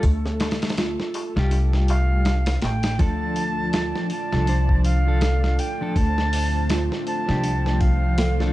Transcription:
Already playing: A3 A4
0.03 D2 D4, kick, open hi-hat, darbuka tek
0.26 snare, darbuka tek
0.40 snare, open hi-hat, darbuka tek
0.51 snare, open hi-hat
0.62 snare, open hi-hat, darbuka tek
0.70 snare, open hi-hat
0.77 F4, snare, open hi-hat, darbuka tek
1.00 snare, darbuka tek
1.14 open hi-hat, darbuka tek
1.36 C2 G3 F4 G4, snare, darbuka tek
1.51 D4, open hi-hat, darbuka tek
1.73 snare, darbuka tek
1.88 F5, open hi-hat, darbuka tek
2.12 darbuka tek
2.25 D4, snare, open hi-hat, darbuka tek
2.46 snare, open hi-hat, darbuka tek
2.62 A1 G5, snare, open hi-hat, darbuka tek
2.83 snare, open hi-hat, darbuka tek
2.99 D2 F3 A3 D4 F4 A4 D5 A5, kick, open hi-hat
3.36 open hi-hat
3.73 F4, snare, open hi-hat
3.95 snare
4.10 A5, open hi-hat
4.32 C2 F3 D4 A4, snare
4.47 F3 D4 C5, open hi-hat
4.69 kick
4.84 F5, open hi-hat
5.06 F3 D4 A4
5.21 A4, snare, open hi-hat
5.44 snare
5.59 G5, open hi-hat
5.81 F3 D4 A4
5.96 D2 D4 C5 A5, kick, open hi-hat
6.18 snare
6.33 open hi-hat
6.70 F4, snare, open hi-hat
6.92 snare
7.07 A5, open hi-hat
7.28 C2 F3 D4 G4, snare
7.44 D4, open hi-hat
7.66 snare
7.80 F5, kick, open hi-hat
8.18 A4, snare, open hi-hat
8.40 F3 D4 A4, snare

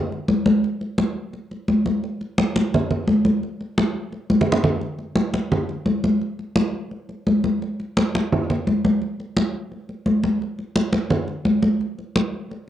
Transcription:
0.12 high conga
0.28 high conga
0.46 high conga
0.64 high conga
0.81 high conga
0.98 high conga
1.33 high conga
1.51 high conga
1.68 high conga
1.86 high conga
2.04 high conga
2.21 high conga
2.38 high conga
2.56 high conga
2.74 high conga, low conga
2.91 high conga, low conga
3.08 high conga
3.25 high conga
3.43 high conga
3.61 high conga
3.78 high conga
4.12 high conga
4.30 high conga
4.41 low conga
4.52 low conga
4.64 low conga
4.81 high conga
4.99 high conga
5.16 high conga
5.34 high conga
5.52 high conga, low conga
5.69 high conga
5.86 high conga
6.04 high conga
6.22 high conga
6.39 high conga
6.56 high conga
6.91 high conga
7.09 high conga
7.27 high conga
7.44 high conga
7.62 high conga
7.80 high conga
7.97 high conga
8.15 high conga
8.32 high conga, low conga
8.50 high conga, low conga
8.67 high conga
8.85 high conga
9.02 high conga
9.20 high conga
9.36 high conga
9.71 high conga
9.89 high conga
10.06 high conga
10.23 high conga
10.42 high conga
10.59 high conga
10.76 high conga
10.93 high conga
11.10 high conga, low conga
11.28 high conga
11.45 high conga
11.63 high conga
11.81 high conga
11.99 high conga
12.16 high conga
12.51 high conga

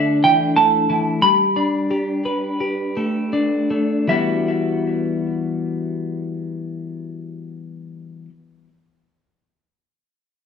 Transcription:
Already playing: D3 A3 D4 A4 E5
0.24 E3 G5
0.56 A3 A5
0.90 E3
1.22 G3 B5
1.56 D4
1.91 G4
2.25 B4
2.60 G4
2.97 A3
3.33 D4
3.70 A3
4.08 E3 G3 B3 E5
4.12 F#4

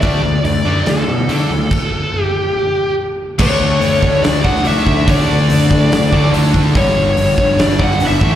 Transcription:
0.00 D2 D3 A3 D4 D5, kick, open hi-hat
0.22 D2 D3 A3
0.44 D2 D3 A3 D5, open hi-hat
0.65 F#2 D3 A3 D4
0.86 D2 D3 A3 A4, snare, open hi-hat
1.08 B2 D3 A3
1.28 D3 A3 D4, open hi-hat
1.50 D2 D3 A3
1.71 kick, crash
2.22 G4
3.39 D2 D3 A3 D4 C#5, kick, crash
3.60 D2
3.81 D2, open hi-hat
4.02 D2, kick
4.23 D2 D5, snare, open hi-hat
4.44 D3 A3 D4 F#5, kick
4.56 snare
4.63 D2 D3 A3 D4 E5, open hi-hat
4.86 D2, kick
5.05 D2 D3 A3 D4, kick, open hi-hat
5.10 D5
5.29 D2
5.50 D2, open hi-hat
5.71 D2, kick
5.92 D2, snare, open hi-hat
6.12 D2 D3 A3 D4, kick
6.32 D2 D3 A3 D4, open hi-hat
6.54 D2, kick
6.74 G1 G2 D3 G3 C#5, kick, open hi-hat
6.96 G1
7.17 G1, open hi-hat
7.38 G1, kick
7.59 G1 D5, snare, open hi-hat
7.79 G2 D3 G3, kick
7.83 F#5
7.91 snare
8.00 G1 G2 D3 G3, open hi-hat
8.07 E5
8.21 A1 A2 E3 A3, kick

